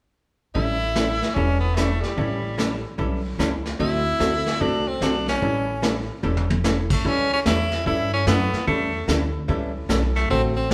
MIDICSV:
0, 0, Header, 1, 6, 480
1, 0, Start_track
1, 0, Tempo, 406504
1, 647, Time_signature, 4, 2, 24, 8
1, 12681, End_track
2, 0, Start_track
2, 0, Title_t, "Hollow-body jazz guitar"
2, 0, Program_c, 0, 26
2, 648, Note_on_c, 0, 52, 48
2, 651, Note_on_c, 0, 55, 51
2, 654, Note_on_c, 0, 61, 52
2, 658, Note_on_c, 0, 69, 58
2, 660, Note_on_c, 0, 64, 53
2, 906, Note_off_c, 0, 52, 0
2, 907, Note_off_c, 0, 55, 0
2, 909, Note_off_c, 0, 61, 0
2, 911, Note_off_c, 0, 69, 0
2, 912, Note_off_c, 0, 64, 0
2, 1126, Note_on_c, 0, 52, 73
2, 1133, Note_on_c, 0, 61, 66
2, 1134, Note_on_c, 0, 55, 71
2, 1136, Note_on_c, 0, 64, 76
2, 1141, Note_on_c, 0, 69, 69
2, 1263, Note_off_c, 0, 52, 0
2, 1267, Note_off_c, 0, 55, 0
2, 1267, Note_off_c, 0, 61, 0
2, 1268, Note_off_c, 0, 64, 0
2, 1271, Note_off_c, 0, 69, 0
2, 1607, Note_on_c, 0, 52, 52
2, 1614, Note_on_c, 0, 55, 58
2, 1617, Note_on_c, 0, 61, 55
2, 1618, Note_on_c, 0, 64, 55
2, 1621, Note_on_c, 0, 69, 59
2, 1866, Note_off_c, 0, 52, 0
2, 1869, Note_off_c, 0, 55, 0
2, 1871, Note_off_c, 0, 61, 0
2, 1871, Note_off_c, 0, 64, 0
2, 1873, Note_off_c, 0, 69, 0
2, 2091, Note_on_c, 0, 52, 67
2, 2098, Note_on_c, 0, 55, 78
2, 2101, Note_on_c, 0, 61, 75
2, 2104, Note_on_c, 0, 64, 74
2, 2108, Note_on_c, 0, 69, 74
2, 2226, Note_off_c, 0, 52, 0
2, 2230, Note_off_c, 0, 55, 0
2, 2231, Note_off_c, 0, 61, 0
2, 2233, Note_off_c, 0, 64, 0
2, 2235, Note_off_c, 0, 69, 0
2, 2568, Note_on_c, 0, 52, 50
2, 2573, Note_on_c, 0, 61, 54
2, 2574, Note_on_c, 0, 55, 52
2, 2577, Note_on_c, 0, 64, 56
2, 2580, Note_on_c, 0, 69, 53
2, 2826, Note_off_c, 0, 52, 0
2, 2829, Note_off_c, 0, 55, 0
2, 2829, Note_off_c, 0, 61, 0
2, 2830, Note_off_c, 0, 64, 0
2, 2832, Note_off_c, 0, 69, 0
2, 3044, Note_on_c, 0, 52, 66
2, 3047, Note_on_c, 0, 55, 70
2, 3051, Note_on_c, 0, 61, 67
2, 3054, Note_on_c, 0, 64, 73
2, 3056, Note_on_c, 0, 69, 74
2, 3182, Note_off_c, 0, 52, 0
2, 3184, Note_off_c, 0, 55, 0
2, 3186, Note_off_c, 0, 61, 0
2, 3187, Note_off_c, 0, 64, 0
2, 3188, Note_off_c, 0, 69, 0
2, 3520, Note_on_c, 0, 52, 56
2, 3526, Note_on_c, 0, 55, 56
2, 3528, Note_on_c, 0, 61, 54
2, 3531, Note_on_c, 0, 64, 58
2, 3536, Note_on_c, 0, 69, 57
2, 3782, Note_off_c, 0, 52, 0
2, 3785, Note_off_c, 0, 55, 0
2, 3786, Note_off_c, 0, 61, 0
2, 3788, Note_off_c, 0, 64, 0
2, 3790, Note_off_c, 0, 69, 0
2, 4004, Note_on_c, 0, 52, 69
2, 4006, Note_on_c, 0, 55, 71
2, 4007, Note_on_c, 0, 61, 79
2, 4011, Note_on_c, 0, 64, 81
2, 4014, Note_on_c, 0, 69, 79
2, 4142, Note_off_c, 0, 52, 0
2, 4144, Note_off_c, 0, 55, 0
2, 4144, Note_off_c, 0, 61, 0
2, 4146, Note_off_c, 0, 64, 0
2, 4147, Note_off_c, 0, 69, 0
2, 4477, Note_on_c, 0, 50, 54
2, 4480, Note_on_c, 0, 57, 54
2, 4486, Note_on_c, 0, 60, 54
2, 4487, Note_on_c, 0, 66, 54
2, 4491, Note_on_c, 0, 69, 55
2, 4741, Note_off_c, 0, 50, 0
2, 4742, Note_off_c, 0, 57, 0
2, 4746, Note_off_c, 0, 60, 0
2, 4746, Note_off_c, 0, 66, 0
2, 4748, Note_off_c, 0, 69, 0
2, 4953, Note_on_c, 0, 50, 66
2, 4958, Note_on_c, 0, 57, 68
2, 4962, Note_on_c, 0, 66, 71
2, 4963, Note_on_c, 0, 60, 67
2, 4966, Note_on_c, 0, 69, 79
2, 5097, Note_off_c, 0, 50, 0
2, 5100, Note_off_c, 0, 57, 0
2, 5102, Note_off_c, 0, 60, 0
2, 5102, Note_off_c, 0, 66, 0
2, 5104, Note_off_c, 0, 69, 0
2, 5441, Note_on_c, 0, 50, 50
2, 5444, Note_on_c, 0, 57, 54
2, 5448, Note_on_c, 0, 66, 57
2, 5449, Note_on_c, 0, 60, 58
2, 5454, Note_on_c, 0, 69, 61
2, 5703, Note_off_c, 0, 50, 0
2, 5704, Note_off_c, 0, 57, 0
2, 5706, Note_off_c, 0, 66, 0
2, 5707, Note_off_c, 0, 60, 0
2, 5710, Note_off_c, 0, 69, 0
2, 5921, Note_on_c, 0, 50, 77
2, 5926, Note_on_c, 0, 57, 72
2, 5932, Note_on_c, 0, 60, 75
2, 5934, Note_on_c, 0, 66, 75
2, 5936, Note_on_c, 0, 69, 81
2, 6062, Note_off_c, 0, 50, 0
2, 6064, Note_off_c, 0, 57, 0
2, 6067, Note_off_c, 0, 60, 0
2, 6068, Note_off_c, 0, 66, 0
2, 6068, Note_off_c, 0, 69, 0
2, 6397, Note_on_c, 0, 52, 51
2, 6402, Note_on_c, 0, 55, 53
2, 6408, Note_on_c, 0, 61, 55
2, 6409, Note_on_c, 0, 64, 53
2, 6411, Note_on_c, 0, 69, 53
2, 6661, Note_off_c, 0, 52, 0
2, 6664, Note_off_c, 0, 55, 0
2, 6666, Note_off_c, 0, 61, 0
2, 6667, Note_off_c, 0, 64, 0
2, 6668, Note_off_c, 0, 69, 0
2, 6875, Note_on_c, 0, 52, 62
2, 6881, Note_on_c, 0, 55, 72
2, 6881, Note_on_c, 0, 61, 70
2, 6885, Note_on_c, 0, 64, 74
2, 6885, Note_on_c, 0, 69, 73
2, 7018, Note_off_c, 0, 52, 0
2, 7021, Note_off_c, 0, 55, 0
2, 7021, Note_off_c, 0, 61, 0
2, 7023, Note_off_c, 0, 64, 0
2, 7024, Note_off_c, 0, 69, 0
2, 7357, Note_on_c, 0, 52, 54
2, 7361, Note_on_c, 0, 55, 50
2, 7363, Note_on_c, 0, 61, 58
2, 7367, Note_on_c, 0, 64, 55
2, 7372, Note_on_c, 0, 69, 60
2, 7621, Note_off_c, 0, 52, 0
2, 7623, Note_off_c, 0, 55, 0
2, 7624, Note_off_c, 0, 61, 0
2, 7626, Note_off_c, 0, 64, 0
2, 7628, Note_off_c, 0, 69, 0
2, 7842, Note_on_c, 0, 52, 64
2, 7845, Note_on_c, 0, 55, 72
2, 7848, Note_on_c, 0, 61, 81
2, 7852, Note_on_c, 0, 64, 78
2, 7853, Note_on_c, 0, 69, 80
2, 7982, Note_off_c, 0, 52, 0
2, 7983, Note_off_c, 0, 55, 0
2, 7985, Note_off_c, 0, 61, 0
2, 7987, Note_off_c, 0, 64, 0
2, 7987, Note_off_c, 0, 69, 0
2, 8323, Note_on_c, 0, 52, 48
2, 8326, Note_on_c, 0, 55, 54
2, 8329, Note_on_c, 0, 64, 56
2, 8332, Note_on_c, 0, 61, 52
2, 8334, Note_on_c, 0, 69, 56
2, 8584, Note_off_c, 0, 52, 0
2, 8586, Note_off_c, 0, 55, 0
2, 8587, Note_off_c, 0, 64, 0
2, 8589, Note_off_c, 0, 61, 0
2, 8589, Note_off_c, 0, 69, 0
2, 8806, Note_on_c, 0, 52, 63
2, 8808, Note_on_c, 0, 55, 74
2, 8811, Note_on_c, 0, 61, 72
2, 8812, Note_on_c, 0, 64, 74
2, 8821, Note_on_c, 0, 69, 85
2, 8944, Note_off_c, 0, 52, 0
2, 8945, Note_off_c, 0, 55, 0
2, 8946, Note_off_c, 0, 61, 0
2, 8947, Note_off_c, 0, 64, 0
2, 8951, Note_off_c, 0, 69, 0
2, 9282, Note_on_c, 0, 52, 52
2, 9284, Note_on_c, 0, 55, 56
2, 9289, Note_on_c, 0, 61, 59
2, 9293, Note_on_c, 0, 64, 58
2, 9296, Note_on_c, 0, 69, 66
2, 9544, Note_off_c, 0, 52, 0
2, 9545, Note_off_c, 0, 55, 0
2, 9547, Note_off_c, 0, 61, 0
2, 9549, Note_off_c, 0, 64, 0
2, 9551, Note_off_c, 0, 69, 0
2, 9766, Note_on_c, 0, 52, 68
2, 9771, Note_on_c, 0, 55, 76
2, 9773, Note_on_c, 0, 61, 79
2, 9773, Note_on_c, 0, 64, 83
2, 9777, Note_on_c, 0, 69, 92
2, 9904, Note_off_c, 0, 52, 0
2, 9906, Note_off_c, 0, 55, 0
2, 9908, Note_off_c, 0, 61, 0
2, 9908, Note_off_c, 0, 64, 0
2, 9909, Note_off_c, 0, 69, 0
2, 10243, Note_on_c, 0, 52, 58
2, 10247, Note_on_c, 0, 55, 58
2, 10250, Note_on_c, 0, 61, 52
2, 10253, Note_on_c, 0, 64, 60
2, 10258, Note_on_c, 0, 69, 59
2, 10505, Note_off_c, 0, 52, 0
2, 10506, Note_off_c, 0, 55, 0
2, 10508, Note_off_c, 0, 61, 0
2, 10509, Note_off_c, 0, 64, 0
2, 10512, Note_off_c, 0, 69, 0
2, 10720, Note_on_c, 0, 52, 70
2, 10720, Note_on_c, 0, 55, 70
2, 10725, Note_on_c, 0, 61, 74
2, 10730, Note_on_c, 0, 64, 70
2, 10733, Note_on_c, 0, 69, 84
2, 10861, Note_off_c, 0, 52, 0
2, 10861, Note_off_c, 0, 55, 0
2, 10864, Note_off_c, 0, 61, 0
2, 10866, Note_off_c, 0, 64, 0
2, 10868, Note_off_c, 0, 69, 0
2, 11197, Note_on_c, 0, 52, 60
2, 11199, Note_on_c, 0, 55, 60
2, 11206, Note_on_c, 0, 61, 59
2, 11209, Note_on_c, 0, 64, 61
2, 11215, Note_on_c, 0, 69, 67
2, 11462, Note_off_c, 0, 52, 0
2, 11463, Note_off_c, 0, 55, 0
2, 11466, Note_off_c, 0, 61, 0
2, 11468, Note_off_c, 0, 64, 0
2, 11471, Note_off_c, 0, 69, 0
2, 11679, Note_on_c, 0, 52, 81
2, 11683, Note_on_c, 0, 55, 73
2, 11686, Note_on_c, 0, 61, 81
2, 11690, Note_on_c, 0, 69, 86
2, 11692, Note_on_c, 0, 64, 78
2, 11821, Note_off_c, 0, 52, 0
2, 11823, Note_off_c, 0, 55, 0
2, 11824, Note_off_c, 0, 61, 0
2, 11827, Note_off_c, 0, 64, 0
2, 11827, Note_off_c, 0, 69, 0
2, 12164, Note_on_c, 0, 50, 56
2, 12166, Note_on_c, 0, 57, 58
2, 12168, Note_on_c, 0, 60, 64
2, 12170, Note_on_c, 0, 66, 56
2, 12177, Note_on_c, 0, 69, 65
2, 12426, Note_off_c, 0, 50, 0
2, 12427, Note_off_c, 0, 57, 0
2, 12428, Note_off_c, 0, 60, 0
2, 12429, Note_off_c, 0, 66, 0
2, 12432, Note_off_c, 0, 69, 0
2, 12645, Note_on_c, 0, 50, 70
2, 12681, Note_off_c, 0, 50, 0
2, 12681, End_track
3, 0, Start_track
3, 0, Title_t, "Tenor saxophone"
3, 0, Program_c, 1, 66
3, 648, Note_on_c, 1, 64, 107
3, 1594, Note_on_c, 1, 61, 88
3, 1611, Note_off_c, 1, 64, 0
3, 1883, Note_off_c, 1, 61, 0
3, 1890, Note_on_c, 1, 59, 81
3, 2071, Note_on_c, 1, 57, 84
3, 2089, Note_off_c, 1, 59, 0
3, 2366, Note_on_c, 1, 55, 77
3, 2384, Note_off_c, 1, 57, 0
3, 3341, Note_off_c, 1, 55, 0
3, 4492, Note_on_c, 1, 64, 112
3, 5449, Note_on_c, 1, 62, 89
3, 5466, Note_off_c, 1, 64, 0
3, 5765, Note_on_c, 1, 60, 82
3, 5783, Note_off_c, 1, 62, 0
3, 5932, Note_off_c, 1, 60, 0
3, 5943, Note_on_c, 1, 62, 87
3, 6222, Note_off_c, 1, 62, 0
3, 6246, Note_on_c, 1, 61, 86
3, 7154, Note_off_c, 1, 61, 0
3, 8175, Note_on_c, 1, 57, 83
3, 8353, Note_on_c, 1, 61, 98
3, 8371, Note_off_c, 1, 57, 0
3, 8649, Note_off_c, 1, 61, 0
3, 8660, Note_on_c, 1, 61, 93
3, 8732, Note_off_c, 1, 61, 0
3, 8827, Note_on_c, 1, 64, 97
3, 9265, Note_off_c, 1, 64, 0
3, 9295, Note_on_c, 1, 64, 99
3, 9579, Note_off_c, 1, 64, 0
3, 9607, Note_on_c, 1, 61, 88
3, 9762, Note_off_c, 1, 61, 0
3, 9776, Note_on_c, 1, 59, 89
3, 10219, Note_off_c, 1, 59, 0
3, 10241, Note_on_c, 1, 57, 80
3, 10691, Note_off_c, 1, 57, 0
3, 11993, Note_on_c, 1, 57, 84
3, 12155, Note_off_c, 1, 57, 0
3, 12169, Note_on_c, 1, 60, 101
3, 12308, Note_off_c, 1, 60, 0
3, 12476, Note_on_c, 1, 60, 90
3, 12663, Note_off_c, 1, 60, 0
3, 12681, End_track
4, 0, Start_track
4, 0, Title_t, "Upright bass"
4, 0, Program_c, 2, 32
4, 649, Note_on_c, 2, 33, 85
4, 1416, Note_off_c, 2, 33, 0
4, 1610, Note_on_c, 2, 28, 78
4, 2377, Note_off_c, 2, 28, 0
4, 2566, Note_on_c, 2, 33, 85
4, 3335, Note_off_c, 2, 33, 0
4, 3527, Note_on_c, 2, 35, 76
4, 3935, Note_off_c, 2, 35, 0
4, 3994, Note_on_c, 2, 37, 82
4, 4408, Note_off_c, 2, 37, 0
4, 4484, Note_on_c, 2, 38, 88
4, 4870, Note_off_c, 2, 38, 0
4, 4958, Note_on_c, 2, 38, 76
4, 5370, Note_off_c, 2, 38, 0
4, 5443, Note_on_c, 2, 36, 80
4, 5853, Note_off_c, 2, 36, 0
4, 5913, Note_on_c, 2, 35, 77
4, 6328, Note_off_c, 2, 35, 0
4, 6403, Note_on_c, 2, 33, 84
4, 7173, Note_off_c, 2, 33, 0
4, 7360, Note_on_c, 2, 28, 73
4, 8131, Note_off_c, 2, 28, 0
4, 8320, Note_on_c, 2, 37, 87
4, 8790, Note_off_c, 2, 37, 0
4, 8803, Note_on_c, 2, 40, 84
4, 9271, Note_off_c, 2, 40, 0
4, 9283, Note_on_c, 2, 43, 82
4, 9751, Note_off_c, 2, 43, 0
4, 9757, Note_on_c, 2, 42, 89
4, 10049, Note_off_c, 2, 42, 0
4, 10241, Note_on_c, 2, 40, 85
4, 10710, Note_off_c, 2, 40, 0
4, 10721, Note_on_c, 2, 38, 82
4, 11191, Note_off_c, 2, 38, 0
4, 11200, Note_on_c, 2, 37, 87
4, 11670, Note_off_c, 2, 37, 0
4, 11679, Note_on_c, 2, 35, 92
4, 12150, Note_off_c, 2, 35, 0
4, 12164, Note_on_c, 2, 33, 87
4, 12633, Note_off_c, 2, 33, 0
4, 12642, Note_on_c, 2, 29, 90
4, 12681, Note_off_c, 2, 29, 0
4, 12681, End_track
5, 0, Start_track
5, 0, Title_t, "Muted upright bass strokes"
5, 10069, Note_on_c, 9, 29, 38
5, 10187, Note_off_c, 9, 29, 0
5, 12681, End_track
6, 0, Start_track
6, 0, Title_t, "Drums"
6, 648, Note_on_c, 9, 25, 48
6, 650, Note_on_c, 9, 36, 31
6, 768, Note_off_c, 9, 36, 0
6, 1129, Note_on_c, 9, 38, 54
6, 1129, Note_on_c, 9, 44, 50
6, 1247, Note_off_c, 9, 38, 0
6, 1247, Note_off_c, 9, 44, 0
6, 1443, Note_on_c, 9, 38, 38
6, 1561, Note_off_c, 9, 38, 0
6, 1612, Note_on_c, 9, 36, 31
6, 1616, Note_off_c, 9, 25, 0
6, 1616, Note_on_c, 9, 25, 47
6, 1730, Note_off_c, 9, 36, 0
6, 2089, Note_on_c, 9, 38, 52
6, 2089, Note_on_c, 9, 44, 61
6, 2207, Note_off_c, 9, 38, 0
6, 2207, Note_off_c, 9, 44, 0
6, 2402, Note_on_c, 9, 38, 36
6, 2520, Note_off_c, 9, 38, 0
6, 2570, Note_off_c, 9, 25, 0
6, 2570, Note_on_c, 9, 25, 46
6, 2570, Note_on_c, 9, 36, 32
6, 2688, Note_off_c, 9, 36, 0
6, 3055, Note_on_c, 9, 38, 55
6, 3055, Note_on_c, 9, 44, 52
6, 3173, Note_off_c, 9, 38, 0
6, 3173, Note_off_c, 9, 44, 0
6, 3529, Note_on_c, 9, 36, 33
6, 3535, Note_off_c, 9, 25, 0
6, 3535, Note_on_c, 9, 25, 48
6, 3647, Note_off_c, 9, 36, 0
6, 4012, Note_on_c, 9, 38, 55
6, 4012, Note_on_c, 9, 44, 50
6, 4130, Note_off_c, 9, 38, 0
6, 4130, Note_off_c, 9, 44, 0
6, 4317, Note_on_c, 9, 38, 38
6, 4435, Note_off_c, 9, 38, 0
6, 4487, Note_on_c, 9, 36, 32
6, 4490, Note_off_c, 9, 25, 0
6, 4490, Note_on_c, 9, 25, 41
6, 4605, Note_off_c, 9, 36, 0
6, 4964, Note_on_c, 9, 38, 51
6, 4964, Note_on_c, 9, 44, 58
6, 5082, Note_off_c, 9, 38, 0
6, 5082, Note_off_c, 9, 44, 0
6, 5274, Note_on_c, 9, 38, 41
6, 5392, Note_off_c, 9, 38, 0
6, 5443, Note_off_c, 9, 25, 0
6, 5443, Note_on_c, 9, 25, 41
6, 5443, Note_on_c, 9, 36, 31
6, 5562, Note_off_c, 9, 36, 0
6, 5924, Note_on_c, 9, 38, 57
6, 5924, Note_on_c, 9, 44, 46
6, 6042, Note_off_c, 9, 38, 0
6, 6042, Note_off_c, 9, 44, 0
6, 6231, Note_on_c, 9, 38, 36
6, 6349, Note_off_c, 9, 38, 0
6, 6404, Note_on_c, 9, 36, 31
6, 6406, Note_off_c, 9, 25, 0
6, 6406, Note_on_c, 9, 25, 41
6, 6522, Note_off_c, 9, 36, 0
6, 6884, Note_on_c, 9, 38, 55
6, 6884, Note_on_c, 9, 44, 59
6, 7002, Note_off_c, 9, 38, 0
6, 7002, Note_off_c, 9, 44, 0
6, 7358, Note_on_c, 9, 48, 40
6, 7476, Note_off_c, 9, 48, 0
6, 7520, Note_on_c, 9, 48, 49
6, 7638, Note_off_c, 9, 48, 0
6, 7679, Note_on_c, 9, 48, 72
6, 7797, Note_off_c, 9, 48, 0
6, 7843, Note_on_c, 9, 38, 56
6, 7843, Note_on_c, 9, 44, 57
6, 7961, Note_off_c, 9, 38, 0
6, 7961, Note_off_c, 9, 44, 0
6, 8149, Note_on_c, 9, 49, 66
6, 8152, Note_on_c, 9, 36, 69
6, 8267, Note_off_c, 9, 49, 0
6, 8270, Note_off_c, 9, 36, 0
6, 8321, Note_off_c, 9, 25, 0
6, 8321, Note_on_c, 9, 25, 45
6, 8324, Note_on_c, 9, 36, 32
6, 8442, Note_off_c, 9, 36, 0
6, 8805, Note_on_c, 9, 38, 70
6, 8805, Note_on_c, 9, 44, 61
6, 8923, Note_off_c, 9, 38, 0
6, 8923, Note_off_c, 9, 44, 0
6, 9111, Note_on_c, 9, 38, 42
6, 9229, Note_off_c, 9, 38, 0
6, 9281, Note_off_c, 9, 25, 0
6, 9281, Note_on_c, 9, 25, 48
6, 9284, Note_on_c, 9, 36, 34
6, 9402, Note_off_c, 9, 36, 0
6, 9763, Note_on_c, 9, 38, 70
6, 9763, Note_on_c, 9, 44, 54
6, 9881, Note_off_c, 9, 38, 0
6, 9881, Note_off_c, 9, 44, 0
6, 10076, Note_on_c, 9, 38, 38
6, 10194, Note_off_c, 9, 38, 0
6, 10246, Note_on_c, 9, 36, 31
6, 10247, Note_off_c, 9, 25, 0
6, 10247, Note_on_c, 9, 25, 41
6, 10364, Note_off_c, 9, 36, 0
6, 10727, Note_on_c, 9, 38, 66
6, 10727, Note_on_c, 9, 44, 63
6, 10846, Note_off_c, 9, 38, 0
6, 10846, Note_off_c, 9, 44, 0
6, 11205, Note_on_c, 9, 36, 33
6, 11207, Note_off_c, 9, 25, 0
6, 11207, Note_on_c, 9, 25, 45
6, 11323, Note_off_c, 9, 36, 0
6, 11685, Note_on_c, 9, 38, 67
6, 11685, Note_on_c, 9, 44, 54
6, 11803, Note_off_c, 9, 38, 0
6, 11803, Note_off_c, 9, 44, 0
6, 11995, Note_on_c, 9, 38, 39
6, 12113, Note_off_c, 9, 38, 0
6, 12166, Note_on_c, 9, 36, 31
6, 12167, Note_off_c, 9, 25, 0
6, 12167, Note_on_c, 9, 25, 47
6, 12284, Note_off_c, 9, 36, 0
6, 12644, Note_on_c, 9, 38, 63
6, 12644, Note_on_c, 9, 44, 57
6, 12681, Note_off_c, 9, 25, 0
6, 12681, Note_off_c, 9, 38, 0
6, 12681, Note_off_c, 9, 44, 0
6, 12681, End_track
0, 0, End_of_file